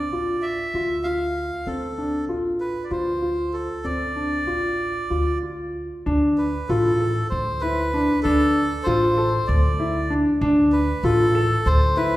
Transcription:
0.00 0.12 D2 medium
0.00 0.46 D5 medium
0.12 0.62 A1 medium
0.12 0.49 F4 medium
0.42 1.07 E5 medium
0.74 1.49 D2 medium
0.74 0.93 F4 medium
1.03 1.42 F4 medium
1.03 1.68 F5 medium
1.67 2.29 D2 medium
1.67 1.85 C4 medium
1.67 2.25 A4 medium
1.98 2.16 D4 medium
2.29 2.79 A1 medium
2.29 2.66 F4 medium
2.60 2.85 B4 medium
2.84 2.91 D5 medium
2.91 3.66 D2 medium
2.91 3.09 F4 medium
2.91 3.56 C5 medium
3.22 3.59 F4 medium
3.53 3.86 A4 medium
3.84 4.47 D2 medium
3.84 4.03 C4 medium
3.84 5.38 D5 medium
4.16 4.34 D4 medium
4.47 4.98 A1 medium
4.47 4.84 F4 medium
5.10 5.88 D2 medium
5.10 5.29 F4 medium
5.43 5.80 F4 medium
6.06 6.57 D2 medium
6.06 6.43 D4 medium
6.38 6.70 B4 medium
6.69 7.19 A1 medium
6.69 6.88 F4 medium
6.69 7.27 A4 medium
7.00 7.37 A4 medium
7.29 8.07 D2 medium
7.29 7.63 C5 medium
7.61 7.81 E4 medium
7.61 8.20 B4 medium
7.94 8.12 D4 medium
8.23 8.75 D2 medium
8.23 8.61 D4 loud
8.23 8.87 A4 medium
8.83 9.36 A1 medium
8.83 9.05 F4 medium
8.83 9.49 C5 loud
9.18 9.54 A4 medium
9.47 10.23 D2 loud
9.47 10.14 D5 loud
9.80 9.98 E4 medium
10.10 10.29 D4 medium
10.41 10.91 D2 loud
10.41 10.78 D4 loud
10.72 11.04 B4 medium
11.03 11.53 A1 loud
11.03 11.22 F4 medium
11.03 11.68 A4 loud
11.35 11.71 A4 medium
11.66 12.17 D2 loud
11.66 11.98 C5 loud
11.97 12.15 E4 medium
11.97 12.17 B4 loud

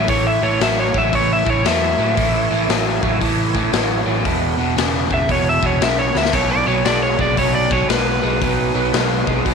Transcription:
0.00 2.13 A3 medium
0.00 2.13 E4 medium
0.00 2.13 C#5 medium
0.08 0.37 A1 medium
0.08 0.38 A2 medium
0.08 0.39 E3 medium
0.08 0.26 C#5 medium
0.08 kick loud
0.08 open hi-hat soft
0.27 0.43 E5 medium
0.41 0.58 A1 medium
0.41 0.58 A2 medium
0.41 0.59 E3 medium
0.41 0.60 C#5 medium
0.60 0.89 A1 medium
0.60 0.91 A2 medium
0.60 0.91 F#3 medium
0.60 0.79 E5 medium
0.60 snare loud
0.60 open hi-hat soft
0.80 0.96 C#5 medium
0.94 1.10 A1 medium
0.94 1.11 A2 medium
0.94 1.11 F#3 medium
0.94 1.13 E5 medium
0.94 kick medium
1.12 1.42 A1 medium
1.12 1.43 A2 medium
1.12 1.43 E3 medium
1.12 1.31 C#5 medium
1.12 kick medium
1.12 open hi-hat medium
1.33 1.48 E5 medium
1.45 1.62 A1 medium
1.45 1.63 A2 medium
1.45 1.63 E3 medium
1.45 kick medium
1.50 1.66 C#5 medium
1.64 1.94 E2 medium
1.64 1.95 A2 medium
1.64 1.95 F#3 medium
1.64 3.18 E5 loud
1.64 snare loud
1.64 open hi-hat medium
1.98 2.15 A2 medium
1.98 2.14 A2 medium
1.98 2.15 F#3 medium
2.16 2.46 A1 medium
2.16 2.47 A2 medium
2.16 2.47 E3 medium
2.16 2.34 A#3 medium
2.16 2.34 F4 medium
2.16 2.34 D5 medium
2.16 kick loud
2.16 open hi-hat medium
2.35 4.23 A3 medium
2.35 4.23 E4 medium
2.35 4.23 C#5 medium
2.50 2.67 A1 medium
2.50 2.67 A2 medium
2.50 2.67 E3 medium
2.69 2.98 A1 medium
2.69 2.99 A2 medium
2.69 2.99 F#3 medium
2.69 snare loud
2.69 open hi-hat medium
3.02 3.19 A1 medium
3.02 3.19 A2 medium
3.02 3.19 F#3 medium
3.02 kick medium
3.21 3.66 A1 medium
3.21 3.51 A2 medium
3.21 3.51 E3 medium
3.21 kick medium
3.21 open hi-hat medium
3.54 3.71 A2 medium
3.54 3.71 E3 medium
3.54 kick medium
3.73 4.02 A1 medium
3.73 4.03 A2 medium
3.73 4.03 F#3 medium
3.73 snare loud
3.73 open hi-hat medium
4.06 4.23 A1 medium
4.06 4.23 A2 medium
4.06 4.23 F#3 medium
4.25 4.54 E1 medium
4.25 4.55 E2 medium
4.25 4.55 B2 loud
4.25 6.31 G#3 medium
4.25 6.31 E4 medium
4.25 6.32 B4 medium
4.25 kick loud
4.25 open hi-hat medium
4.58 4.74 E1 medium
4.58 4.75 E2 medium
4.58 4.75 B2 medium
4.76 5.06 E1 medium
4.76 5.07 E2 medium
4.76 5.07 C#3 medium
4.76 snare loud
4.76 open hi-hat medium
5.10 5.27 E1 medium
5.10 5.27 E2 medium
5.10 5.27 C#3 medium
5.10 5.30 E5 loud
5.10 kick medium
5.28 5.58 E1 medium
5.28 5.59 E2 medium
5.28 5.59 B2 medium
5.28 5.47 C#5 loud
5.28 kick medium
5.28 open hi-hat medium
5.49 5.65 E5 medium
5.62 5.79 E1 medium
5.62 5.79 E2 medium
5.62 5.79 B2 medium
5.62 5.82 C#5 medium
5.62 kick medium
5.80 6.10 B1 medium
5.80 6.11 E2 medium
5.80 6.11 C#3 medium
5.80 5.99 E5 medium
5.80 snare loud
5.80 open hi-hat medium
5.99 6.15 C#5 medium
6.15 6.31 C#2 medium
6.15 6.31 E2 medium
6.15 6.32 C#3 medium
6.15 6.33 E5 medium
6.15 snare medium
6.25 snare medium
6.33 6.62 B1 medium
6.33 6.63 B2 medium
6.33 6.63 F#3 medium
6.33 6.50 G3 medium
6.33 6.50 E4 medium
6.33 6.51 C5 medium
6.33 6.50 C#5 medium
6.33 kick loud
6.33 open hi-hat medium
6.33 splash medium
6.51 9.54 F#3 medium
6.51 9.54 D#4 medium
6.51 9.54 B4 medium
6.51 6.67 D5 loud
6.66 6.83 B1 medium
6.66 6.83 B2 medium
6.66 6.83 F#3 medium
6.66 6.84 C#5 medium
6.85 7.14 B1 medium
6.85 7.15 B2 medium
6.85 7.15 G#3 medium
6.85 7.02 D5 medium
6.85 snare medium
6.85 open hi-hat medium
7.03 7.20 C#5 medium
7.18 7.35 B1 medium
7.18 7.35 B2 medium
7.18 7.36 G#3 medium
7.18 7.37 D5 medium
7.18 kick medium
7.37 7.82 B1 medium
7.37 7.67 B2 medium
7.37 7.67 F#3 medium
7.37 7.55 C#5 medium
7.37 kick medium
7.37 open hi-hat medium
7.55 7.72 D5 medium
7.70 7.87 B2 medium
7.70 7.87 F#3 medium
7.70 7.89 C#5 medium
7.70 kick medium
7.89 8.18 B1 medium
7.89 8.19 B2 medium
7.89 8.19 G#3 medium
7.89 9.41 B4 loud
7.89 snare loud
7.89 open hi-hat medium
8.22 8.39 B1 medium
8.22 8.39 B2 medium
8.22 8.39 G#3 medium
8.41 8.70 B1 medium
8.41 8.71 B2 medium
8.41 8.72 F#3 medium
8.41 kick loud
8.41 open hi-hat medium
8.75 8.91 B1 medium
8.75 8.91 B2 medium
8.75 8.92 F#3 medium
8.93 9.22 B1 medium
8.93 9.23 B2 medium
8.93 9.24 G#3 medium
8.93 snare loud
8.93 open hi-hat soft
9.27 9.43 B1 medium
9.27 9.43 B2 medium
9.27 9.43 G#3 medium
9.27 kick medium
9.45 9.54 B1 medium
9.45 9.54 B2 medium
9.45 9.54 F#3 medium
9.45 kick medium
9.45 open hi-hat soft

